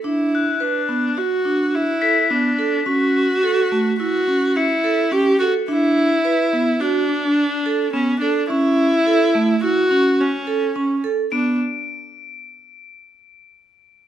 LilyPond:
<<
  \new Staff \with { instrumentName = "Crotales" } { \time 5/4 \key b \minor \tempo 4 = 106 r8 fis'''2 r4 b'''4.~ | b'''8 r2 r8 cis''''2 | r1 r4 | r1 r4 |
d''''1~ d''''4 | }
  \new Staff \with { instrumentName = "Viola" } { \time 5/4 \key b \minor e'4 d'4 fis'4 e'4 d'4 | fis'2 fis'4 e'4 g'8 fis'8 | e'2 d'2 cis'8 d'8 | e'2 fis'4 cis'4. r8 |
d'8 r1 r8 | }
  \new Staff \with { instrumentName = "Vibraphone" } { \time 5/4 \key b \minor d'4 b'8 b8 fis'8 d'4 a'8 b8 a'8 | cis'4 a'8 a8 e'8 cis'4 a'8 cis'8 a'8 | d'4 b'8 b8 fis'8 d'4 a'8 b8 a'8 | cis'4 a'8 a8 e'8 cis'4 a'8 cis'8 a'8 |
b8 r1 r8 | }
>>